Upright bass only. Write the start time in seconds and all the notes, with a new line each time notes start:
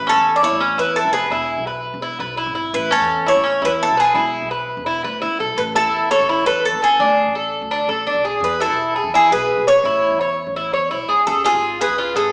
Already playing: A1
0.16 E2
0.51 A1
0.77 E2
1.04 F1
1.30 E1
1.57 B1
1.94 E1
2.19 B1
2.46 G#1
2.73 A1
3.00 E2
3.35 A1
3.62 E2
3.88 B1
4.15 E1
4.42 B1
4.77 E1
5.04 D2
5.22 C#2
5.39 B1
5.57 A1
5.84 E2
6.19 A1
6.46 E2
6.73 F#1
6.99 D2
7.25 A1
7.62 D2
7.88 A1
8.14 B1
8.40 E2
8.67 B1
9.04 E2
9.31 B1
9.57 B1
9.84 A1
10.11 E2
10.47 A1
10.73 E2
10.90 B1
11.08 C#2
11.27 C#2
11.53 G#1
11.88 C#2
12.14 G#1